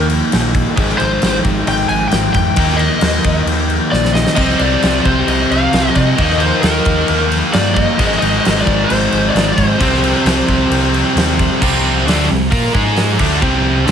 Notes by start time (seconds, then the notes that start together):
Already playing: D#2 D#3 A#3 D#4
0.10 crash
0.32 A#1, snare, crash
0.55 kick, crash
0.76 G#1 G#2 D#3 G#3, kick, crash
0.90 snare
0.98 G#1 C5, crash
1.22 G#1, snare, crash
1.44 G#1, kick, crash
1.67 G#1 G5, crash
1.89 G#1 G#5, crash
2.08 G#1 G5, crash
2.13 snare
2.33 F2 G5, kick, snare, crash
2.56 D#2 D#3 A#3 D#4, kick, crash
2.69 snare
2.77 D#5, crash
3.01 D#2, snare, crash
3.24 D#2, kick, crash
3.45 D#2, crash
3.70 crash
3.92 A#1 D5, snare
4.05 snare
4.14 D#5, snare
4.27 snare
4.36 C2 C3 G3 D#5, kick, splash, crash
4.41 C4
4.50 snare
4.59 C2 D5, crash
4.83 C2, snare, crash
5.05 C2 C5, kick, crash
5.27 C2 D#5, crash
5.50 C2 F5, crash
5.73 C2, snare, crash
5.95 C3 D#5, kick, snare, crash
6.18 D#2 D#3 A#3 D#4, kick, crash
6.30 snare
6.40 C5, crash
6.62 D#2 A#4, snare, crash
6.85 D#2, kick, crash
7.08 D#2, crash
7.32 crash
7.53 G2 D5, snare, crash
7.74 D#5, kick, crash
7.98 G#1 G#2 D#3 G#3, kick, crash
8.12 snare
8.19 G#1 D#5, crash
8.45 G#1, snare, crash
8.61 D5
8.67 G#1, kick, crash
8.84 C5
8.90 G#1, crash
9.12 G#1, crash
9.29 D5
9.34 G#1, snare, crash
9.52 C5
9.58 G#2, kick, crash
9.80 C2 C3 G3 C4, kick, crash
9.94 snare
10.04 crash
10.25 C2, snare, crash
10.48 C2, kick, crash
10.70 C2, crash
10.94 crash
11.15 D#2, snare, crash
11.39 kick, snare, crash
11.61 C2 C3 G3 C4, kick, crash
12.06 D2 D3 A3 D4, snare, open hi-hat
12.29 C2 C3 G3
12.51 A#2 A#3 F4 A#4, kick, open hi-hat
12.74 G#2 G#3 D#4 G#4, kick
12.96 snare, open hi-hat
13.19 D2 D3 A3 D4, kick, crash
13.41 C2 C3 G3 C4, kick
13.86 D2 D3 A3 D4, open hi-hat